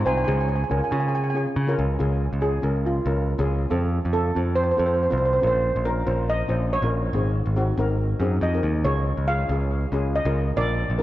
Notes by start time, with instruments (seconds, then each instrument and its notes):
Already playing: steel pan C4 D#4 F4
0.06 picked electric bass C2, steel pan C5 G#5
0.18 steel pan G#5
0.25 picked electric bass C#2, steel pan C#4 F4 G#4 G#5
0.32 steel pan G#5
0.41 steel pan G#5
0.48 steel pan G#5
0.56 steel pan G#5
0.64 steel pan G#5
0.70 picked electric bass C#2, steel pan C#4 F4 A#4 G#5
0.78 steel pan G#5
0.84 steel pan G#5
0.91 picked electric bass C#3, steel pan C#4 F4 G#4 G#5
1.00 steel pan G#5
1.08 steel pan G#5
1.15 steel pan G#5
1.24 steel pan G#5
1.30 steel pan G#5
1.34 steel pan C#4 F4 G#4 G#5
1.56 picked electric bass C#3
1.67 steel pan C#4 F4 A#4
1.78 picked electric bass C#2
1.99 picked electric bass C#2, steel pan C#4 F4 G#4
2.32 picked electric bass C#2
2.41 steel pan C#4 F4 G#4
2.62 picked electric bass C#2, steel pan C#4 F4 A#4
2.86 steel pan F4
3.06 picked electric bass C#2, steel pan C#4 F4 A#4
3.38 picked electric bass C#2, steel pan C#4 F4 G#4
3.70 picked electric bass F2, steel pan C4 F4 A4
4.05 picked electric bass F2
4.13 steel pan C4 F4 A4
4.35 picked electric bass F2, steel pan C4 F4 A4
4.55 steel pan C5
4.64 steel pan C5
4.71 steel pan C5
4.77 picked electric bass F2, steel pan C4 F4 A4 C5
4.86 steel pan C5
4.94 steel pan C5
5.03 steel pan C5
5.10 picked electric bass C2, steel pan C4 F4 C5
5.18 steel pan C5
5.25 steel pan C5
5.33 steel pan C5
5.40 picked electric bass A#1, steel pan C#4 F4 A#4 C5
5.47 steel pan C5
5.76 picked electric bass A#1
5.84 steel pan C#4 F4 A#4
6.06 picked electric bass A#1, steel pan C#4 F4 C5
6.30 steel pan D#5
6.48 picked electric bass A#1, steel pan C#4 F4 C5
6.73 steel pan C#5
6.82 picked electric bass A#1, steel pan C#4 F4 A#4
7.13 picked electric bass G#1, steel pan C4 D#4 G#4
7.45 picked electric bass G#1
7.56 steel pan C4 D#4 F#4
7.78 picked electric bass G#1, steel pan C4 D#4 A#4
8.20 picked electric bass F#2, steel pan C4 D#4 G#4
8.41 picked electric bass F2, steel pan D#5
8.54 steel pan C4 D#4 A#4
8.63 picked electric bass D#2
8.85 picked electric bass C#2, steel pan C#4 F4 G#4 C#5
9.17 picked electric bass C#2
9.27 steel pan C#4 F4 G#4 F5
9.49 picked electric bass C#2, steel pan C#4 F4 G#4
9.92 picked electric bass C#2, steel pan C#4 F4 G#4
10.15 steel pan D#5
10.25 picked electric bass C#2, steel pan C#4 F4 A#4
10.56 picked electric bass A#1, steel pan D4 F4 A#4 D5
10.90 picked electric bass A#1
10.98 steel pan D4 F4 A#4